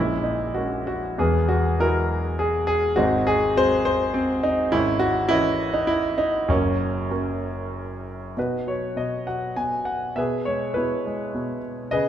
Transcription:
0.00 1.15 A#1 medium
0.00 1.15 A#2 medium
0.00 0.54 G#3 medium
0.00 0.55 C#4 medium
0.00 0.22 E4 medium
0.24 0.56 D#4 medium
0.54 1.16 G#3 soft
0.54 1.16 A#3 soft
0.54 1.17 C#4 soft
0.54 0.84 F#4 medium
0.87 1.16 F#4 medium
1.18 2.93 E1 medium
1.18 2.93 E2 medium
1.18 2.05 B3 medium
1.18 1.47 G#4 medium
1.49 1.80 F#4 medium
1.79 2.93 F#3 soft
1.79 2.94 G#3 soft
1.79 2.94 E4 medium
1.79 2.64 F#4 medium
1.79 2.40 A#4 medium
2.39 2.66 G#4 medium
2.67 2.98 G#4 medium
2.96 4.68 G#1 medium
2.96 4.68 G#2 medium
2.96 3.56 C4 medium
2.96 3.82 D#4 medium
2.96 3.27 F#4 medium
3.27 3.54 G#4 loud
3.56 4.69 F#3 medium
3.56 4.69 G#3 medium
3.56 4.13 C4 medium
3.56 3.84 C5 loud
3.85 4.15 C5 loud
4.14 4.44 C4 medium
4.43 4.73 D#4 medium
4.72 6.45 G#1 medium
4.72 6.46 G#2 medium
4.72 5.29 C#4 medium
4.72 5.02 E4 loud
4.99 5.31 F#4 loud
5.29 6.46 E3 medium
5.29 6.15 C#4 medium
5.29 5.75 E4 loud
5.29 6.46 D#5 medium
5.74 5.89 D#4 medium
5.87 6.16 E4 loud
6.18 6.47 D#4 medium
6.48 8.32 F#1 medium
6.48 8.32 F#2 medium
6.48 7.09 F#3 medium
6.48 7.10 A#3 medium
6.48 7.10 C#4 medium
7.11 8.33 F#3 soft
7.11 8.33 A#3 soft
7.11 8.33 C#4 medium
8.37 8.95 B2 medium
8.37 9.25 D#4 soft
8.37 9.25 F#4 soft
8.37 8.69 B4 medium
8.67 9.26 F#3 soft
8.67 8.96 C#5 medium
8.96 9.55 B2 soft
8.96 9.29 D#5 medium
9.27 10.15 F#3 soft
9.27 9.58 F#5 medium
9.56 10.15 B2 soft
9.56 9.88 G#5 medium
9.85 10.17 F#5 medium
10.16 10.75 B2 medium
10.16 10.75 G#4 medium
10.16 10.72 B4 medium
10.16 10.44 E5 medium
10.45 11.04 G#3 soft
10.45 10.76 C#5 medium
10.74 11.33 B2 medium
10.74 11.58 E4 soft
10.74 11.58 G#4 soft
10.74 11.57 B4 medium
11.06 11.89 G#3 medium
11.35 11.90 B2 soft
11.91 12.09 C#3 medium
11.91 12.09 G#4 medium
11.91 12.09 B4 medium
11.91 12.09 D#5 medium

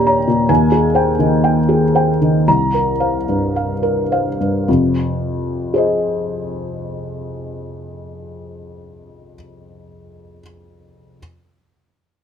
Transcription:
0.00 0.27 A#2 medium
0.00 0.52 G4 medium
0.00 0.06 C#5 medium
0.00 0.52 G5 medium
0.00 0.07 A#5 medium
0.06 0.26 C#5 soft
0.06 0.26 A#5 medium
0.27 0.50 A#2 soft
0.49 2.42 D#2 medium
0.49 0.86 G#5 medium
0.72 1.10 G#4 soft
0.95 1.16 C5 soft
0.95 1.17 G5 soft
1.19 1.58 D#3 soft
1.44 1.84 G5 soft
1.69 2.09 G#4 soft
1.95 2.18 C5 soft
1.95 2.18 G5 soft
2.21 2.47 D#3 soft
2.48 4.64 C2 soft
2.48 2.90 A#5 medium
2.74 3.17 A#4 soft
3.00 3.25 C5 soft
3.00 3.25 F5 soft
3.29 3.72 G2 soft
3.56 4.01 F5 soft
3.83 4.29 A#4 soft
4.12 4.37 C5 soft
4.12 4.37 F5 soft
4.41 4.67 G2 soft
4.68 9.34 F2 soft
4.68 9.34 C3 soft
5.74 10.39 G#4 soft
5.74 10.41 C5 soft
5.74 10.42 D#5 soft

